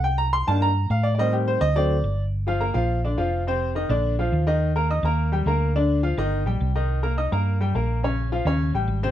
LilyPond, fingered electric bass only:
\new Staff \with { instrumentName = "Fingered electric bass" } { \clef bass \time 4/4 \key ees \lydian \tempo 4 = 210 c,4. g,4. a,4~ | a,4. d,4. g,,4~ | g,,4. bes,,4. f,,4~ | f,,4. bes,,4. ees,4~ |
ees,4. ees,4. d,4~ | d,4. g,,4 bes,,8 c,4~ | c,4. g,4. bes,,4~ | bes,,4. ees,4 a,,8 aes,,4 | }